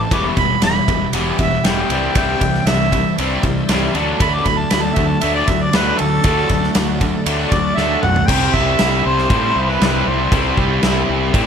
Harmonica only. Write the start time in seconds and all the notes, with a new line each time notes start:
0.01 A5
0.13 D6
0.37 B5
0.64 B5
1.41 E5
1.65 G5
2.16 G5
2.67 E5
4.21 B5
4.34 D6
4.45 B5
4.58 A5
4.71 B5
4.81 A5
4.95 E5
5.08 A5
5.22 E5
5.35 D5
5.47 E5
5.62 D5
5.74 B4
5.98 A4
7.50 D5
7.75 E5
8.02 F#5
8.26 G5
8.54 E5
9.06 C5
9.69 B4
10.07 C5